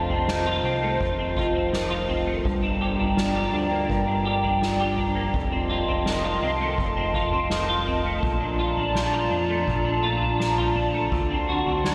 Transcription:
Already playing: clean electric guitar F2 F3 A3 F4, ambient pad F4 C5 D#5 A5
0.09 analog synth bass F1, clean electric guitar C4, floor tom
0.28 clean electric guitar D#3, snare
0.46 clean electric guitar F4
0.64 analog synth bass C2, clean electric guitar C4
0.83 clean electric guitar A3
1.01 analog synth bass F1, clean electric guitar F2, kick
1.19 clean electric guitar C4
1.37 clean electric guitar F4, kick
1.55 clean electric guitar C4, floor tom
1.73 clean electric guitar D#3, snare
1.90 clean electric guitar F4
2.09 clean electric guitar C4, floor tom
2.27 clean electric guitar A3
2.44 analog synth bass G1, clean electric guitar G2, ambient pad D5 G5 A#5, kick, floor tom
2.63 clean electric guitar D4
2.81 clean electric guitar G4
2.99 analog synth bass G1, clean electric guitar D4, floor tom
3.17 clean electric guitar F3, snare
3.35 clean electric guitar G4
3.53 analog synth bass D2, clean electric guitar D4
3.71 clean electric guitar A#3
3.89 analog synth bass G1, clean electric guitar G2, kick
4.07 clean electric guitar D4
4.25 clean electric guitar G4
4.44 clean electric guitar D4, floor tom
4.61 clean electric guitar F3, snare
4.80 clean electric guitar G4
4.97 clean electric guitar D4, floor tom
5.15 clean electric guitar A#3
5.33 analog synth bass F1, clean electric guitar F2, ambient pad D#5 A5 C6, kick, floor tom
5.52 clean electric guitar C4
5.70 clean electric guitar F4
5.88 analog synth bass F1, clean electric guitar C4, floor tom
6.06 clean electric guitar D#3, snare
6.24 clean electric guitar F4
6.42 analog synth bass C2, clean electric guitar C4
6.61 clean electric guitar A3
6.78 analog synth bass F1, clean electric guitar F2, kick
6.97 clean electric guitar C4
7.14 clean electric guitar F4, kick
7.32 clean electric guitar C4, floor tom
7.50 clean electric guitar D#3, snare
7.69 clean electric guitar F4
7.87 clean electric guitar C4, floor tom
8.05 clean electric guitar A3
8.23 analog synth bass A#1, clean electric guitar A#2, ambient pad F4 D5 A#5, kick, floor tom
8.41 clean electric guitar D4
8.59 clean electric guitar F4
8.77 analog synth bass A#1, clean electric guitar D4, floor tom
8.95 clean electric guitar F3, snare
9.13 clean electric guitar F4
9.31 analog synth bass F2, clean electric guitar D4
9.49 clean electric guitar A3
9.67 analog synth bass A#1, clean electric guitar A#2, kick
9.85 clean electric guitar D4
10.03 clean electric guitar F4
10.21 clean electric guitar D4, floor tom
10.39 clean electric guitar F3, snare
10.58 clean electric guitar F4, floor tom
10.76 clean electric guitar D4, floor tom
10.94 clean electric guitar A3
11.12 analog synth bass D2, clean electric guitar D3, ambient pad F#4 D5 C6, kick, floor tom
11.30 clean electric guitar C4
11.49 clean electric guitar F#4
11.66 analog synth bass D2, clean electric guitar C4, floor tom
11.85 clean electric guitar F#3, snare

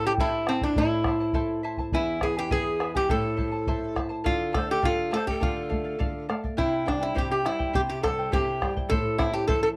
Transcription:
Already playing: nylon-string guitar A2
0.04 charango E4 C5 A5, pan flute G4, resonator guitar played with a steel bar G4
0.18 pan flute E4, charango E4 A4 C5 E5 A5, resonator guitar played with a steel bar E4, bombo low
0.47 resonator guitar played with a steel bar C4, pan flute C4, charango E4 C5 E5 A5, bombo rim
0.61 resonator guitar played with a steel bar D4, pan flute D4, charango E4 C5 A5, bombo low
0.76 nylon-string guitar A2, charango E4 A4 C5 E5 A5, resonator guitar played with a steel bar E4, pan flute E4, bombo low
1.04 charango E4 C5 E5 A5, bombo rim, bombo low
1.20 charango E4 C5 A5
1.33 charango E4 A4 C5 E5 A5, bombo low
1.63 charango E4 C5 E5 A5
1.77 charango E4 C5 A5, bombo low
1.92 nylon-string guitar E2, charango E4 G#4 B4 E5 G#5, resonator guitar played with a steel bar E4, pan flute E4, bombo low
2.21 charango E4 B4 E5 G#5, pan flute G#4, resonator guitar played with a steel bar G#4, bombo rim, bombo low
2.36 charango E4 B4 G#5, pan flute G4, resonator guitar played with a steel bar G4
2.51 charango E4 G#4 B4 E5 G#5, pan flute G#4, resonator guitar played with a steel bar G#4, bombo low
2.80 charango E4 B4 E5 G#5, bombo rim
2.95 charango E4 B4 G#5, pan flute G4, resonator guitar played with a steel bar G4, bombo low
3.09 nylon-string guitar A2, charango E4 A4 C5 E5 A5, pan flute A4, resonator guitar played with a steel bar A4, bombo low
3.37 charango E4 C5 E5 A5, bombo low
3.52 charango E4 C5 A5
3.67 charango E4 A4 C5 E5 A5, bombo low
3.96 charango E4 C5 E5 A5, bombo rim, bombo low
4.09 charango E4 C5 A5
4.24 nylon-string guitar D3, resonator guitar played with a steel bar F4, charango A4 D5 F5, pan flute A4, bombo low
4.52 nylon-string guitar A3, charango A4 D5 F5, resonator guitar played with a steel bar A4, pan flute C5, bombo rim, bombo low
4.67 pan flute A4, charango D5 F5
4.71 resonator guitar played with a steel bar G4
4.82 nylon-string guitar D3, resonator guitar played with a steel bar F4, charango A4 D5 F5, pan flute A4, bombo low
5.11 nylon-string guitar A3, charango A4 D5 F5, resonator guitar played with a steel bar A4, bombo rim
5.15 pan flute C5
5.26 resonator guitar played with a steel bar G4, pan flute A4, charango D5 F5, bombo low
5.40 nylon-string guitar D3, resonator guitar played with a steel bar F4, charango A4 D5 F5, pan flute A4, bombo low
5.69 nylon-string guitar A3, charango A4 D5 F5, bombo low
5.84 charango D5 F5
5.99 nylon-string guitar D3, charango A4 D5 F5, bombo low
6.29 nylon-string guitar A3, charango A4 D5 F5, bombo rim
6.44 charango D5 F5, bombo low
6.57 nylon-string guitar C3, charango E4 G4 C5 E5 G5, resonator guitar played with a steel bar E4, pan flute E4, bombo low
6.86 nylon-string guitar G3, pan flute D4, resonator guitar played with a steel bar D4, charango E4 C5 E5 G5, bombo rim, bombo low
7.00 pan flute E4, charango E4 C5 G5, resonator guitar played with a steel bar E4
7.14 nylon-string guitar C3, charango E4 G4 C5 E5 G5, pan flute G4, resonator guitar played with a steel bar G4, bombo low
7.30 pan flute G4, resonator guitar played with a steel bar G4
7.45 nylon-string guitar G3, charango E4 C5 E5 G5, pan flute E4, resonator guitar played with a steel bar E4, bombo rim
7.59 charango E4 C5 G5, bombo low
7.73 nylon-string guitar C3, charango E4 G4 C5 E5 G5, pan flute G4, resonator guitar played with a steel bar G4, bombo low
7.89 pan flute G4, resonator guitar played with a steel bar G4
8.02 nylon-string guitar G3, charango E4 C5 E5 G5, pan flute A4, resonator guitar played with a steel bar A4, bombo rim, bombo low
8.19 charango E4 C5 G5
8.32 nylon-string guitar C3, charango E4 G4 C5 E5 G5, pan flute G4, resonator guitar played with a steel bar G4, bombo low
8.61 nylon-string guitar G3, charango E4 C5 E5 G5, bombo rim, bombo low
8.76 charango E4 C5 G5, bombo low
8.89 nylon-string guitar A2, charango E4 A4 C5 E5 A5, pan flute A4, resonator guitar played with a steel bar A4, bombo low
9.18 nylon-string guitar C4, resonator guitar played with a steel bar E4, pan flute E4, charango E4 C5 E5 A5, bombo rim, bombo low
9.32 charango E4 C5 A5, pan flute G4, resonator guitar played with a steel bar G4
9.47 nylon-string guitar E3, charango E4 A4 C5 E5 A5, resonator guitar played with a steel bar A4, pan flute A4, bombo low
9.63 resonator guitar played with a steel bar A4, pan flute A4

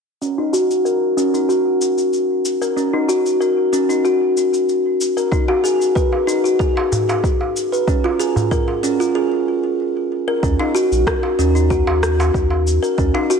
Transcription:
0.22 kalimba C#4, cabasa
0.38 kalimba D#4
0.53 kalimba F#4, cabasa
0.71 cabasa
0.85 kalimba A#4, cabasa
1.17 kalimba C#4, cabasa
1.34 kalimba D#4, cabasa
1.49 kalimba F#4, cabasa
1.81 cabasa
1.98 cabasa
2.13 cabasa
2.45 cabasa
2.62 kalimba A#4, cabasa
2.77 kalimba C#4, cabasa
2.94 kalimba D#4
3.08 kalimba F#4, cabasa
3.26 cabasa
3.41 kalimba A#4, cabasa
3.73 kalimba C#4, cabasa
3.89 kalimba D#4, cabasa
4.05 kalimba F#4, cabasa
4.37 cabasa
4.54 cabasa
4.69 cabasa
5.01 cabasa
5.17 kalimba A#4, cabasa
5.32 kalimba D#4, kick, cabasa
5.48 kalimba F#4, darbuka tek
5.64 kalimba G#4, cabasa
5.81 cabasa
5.95 kalimba B4, kick, cabasa
6.12 darbuka ka
6.27 kalimba D#4, cabasa
6.44 kalimba F#4, cabasa
6.59 kalimba G#4, kick, cabasa
6.77 darbuka tek
6.92 darbuka dum, cabasa
7.09 darbuka ka, darbuka tek, cabasa
7.24 kick, cabasa
7.41 darbuka ka, darbuka tek
7.56 cabasa
7.72 kalimba B4, cabasa
7.88 kalimba C#4, kick, cabasa
8.04 kalimba F4, darbuka tek
8.20 kalimba G#4, cabasa
8.36 darbuka dum, cabasa
8.51 kalimba A#4, kick, cabasa
8.68 darbuka ka
8.83 kalimba C#4, cabasa
9.00 kalimba F4, cabasa
9.15 kalimba G#4
10.28 kalimba A#4
10.43 sub bass D#2, kalimba C#4, kick, cabasa
10.60 kalimba D#4, darbuka tek
10.75 kalimba F#4, cabasa
10.91 sub bass A#1, cabasa
11.07 kalimba A#4, kick, cross-stick, cabasa
11.23 darbuka ka
11.38 sub bass D#2, kalimba C#4, cabasa
11.55 kalimba D#4, cabasa
11.70 kalimba F#4, kick, cabasa
11.87 sub bass D#2, darbuka tek
12.03 cross-stick, cabasa
12.20 darbuka ka, darbuka tek, cabasa
12.34 sub bass D#2, kick, cabasa
12.50 darbuka ka, darbuka tek
12.67 cabasa
12.83 kalimba A#4, cabasa
12.98 sub bass D#2, kalimba C#4, kick, cabasa
13.14 kalimba D#4, darbuka tek
13.30 kalimba F#4, cabasa

